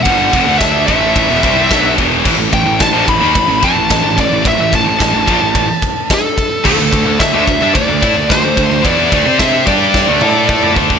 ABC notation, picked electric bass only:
X:1
M:4/4
L:1/16
Q:1/4=109
K:Ador
V:1 name="Picked electric bass" clef=bass
G,,,2 =F,,, D,,3 A,,,3 E,,, C,,2 B,,,2 E,,,2 | A,,, A,,, A,,, A,,, A,,, ^A,,, =A,,, ^D,, A,,, A,,, =F,, A,,, A,,, A,,, A,,, A,,, | A,,, A,,, A,,, A,,, A,,, A,,, ^A,,, =A,,, A,,, z6 z | D,, D,, D,, D,, D,, D,, D,, G,, D,, D,, A,, D,, D,, D,, D,, D,, |
E,,2 D,, C,3 G,,3 D,, A,,2 A,,2 D,,2 |]